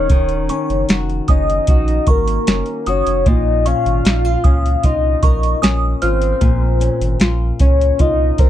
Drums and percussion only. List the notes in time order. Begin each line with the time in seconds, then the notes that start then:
0.10 kick, closed hi-hat
0.29 closed hi-hat
0.49 closed hi-hat
0.70 closed hi-hat
0.89 snare, closed hi-hat
1.10 closed hi-hat
1.28 kick, closed hi-hat
1.50 closed hi-hat
1.67 kick, closed hi-hat
1.88 closed hi-hat
2.07 kick, closed hi-hat
2.28 closed hi-hat
2.47 snare, closed hi-hat
2.66 closed hi-hat
2.86 closed hi-hat
3.07 closed hi-hat
3.26 kick, closed hi-hat
3.66 closed hi-hat
3.86 closed hi-hat
4.05 snare, closed hi-hat
4.44 kick, closed hi-hat
4.66 closed hi-hat
4.83 kick, closed hi-hat
5.23 kick, closed hi-hat
5.43 closed hi-hat
5.63 snare, closed hi-hat
6.02 closed hi-hat
6.22 closed hi-hat
6.41 kick, closed hi-hat
6.81 closed hi-hat
7.01 closed hi-hat
7.20 snare, closed hi-hat
7.59 kick, closed hi-hat
7.81 closed hi-hat
7.99 kick, closed hi-hat
8.38 kick, closed hi-hat